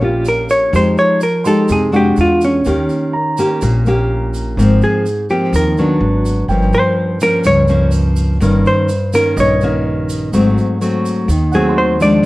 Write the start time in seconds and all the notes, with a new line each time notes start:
Already playing: A#1 A#2 G5
0.01 A#3 C#4 F4 G4, shaker
0.25 A#4, shaker
0.49 C#5, shaker
0.73 F2 F3 G#3 D#4 G4 C5, shaker
0.97 C#5, shaker
1.21 A#4, shaker
1.44 G#3 D#4 G4 A4 C6, shaker
1.68 F2 C3 G#4, shaker
1.92 G#3 D4 F#4, shaker
1.96 G4
2.16 E2, shaker
2.21 F4
2.41 C#4, shaker
2.65 D#2 D#3 A#3 C#4 G4, shaker
2.89 shaker
3.13 A#5
3.38 A#3 C#4 G4, shaker
3.61 A#1 A#2, shaker
3.86 A#3 C#4 G4, shaker
4.34 shaker
4.57 G#1 G#2 F3 A#3 C4, shaker
4.81 G#4, shaker
5.06 shaker
5.30 F3 A#3 C4 G4, shaker
5.53 D#2 D#3 A#4, shaker
5.78 F#3 B3 D4, shaker
6.00 G#1
6.25 shaker
6.48 G1 G2 F3 A#3 C#4 G5, shaker
6.73 C5, shaker
7.21 F3 A#3 C#4 A#4, shaker
7.44 C#2 G2 C#5, shaker
7.68 F3 A#3 C#4, shaker
7.91 shaker
8.16 shaker
8.40 G1 G2 D#3 A#3 C#4, shaker
8.66 C5, shaker
8.89 shaker
9.13 D#3 A#3 C#4 A#4, shaker
9.36 A#1 G2 C#5 D#5, shaker
9.61 D#3 A#3 C#4, shaker
10.10 shaker
10.33 G#1 G#2 F#3 A3 C4, shaker
10.58 shaker
10.81 F#3 A3 C4, shaker
11.05 shaker
11.28 D#2 D#3, shaker
11.52 F#3 A3 C4 G#4 F#5, shaker
11.69 C6
11.78 C5
12.00 F3 G#3 D4 D5, shaker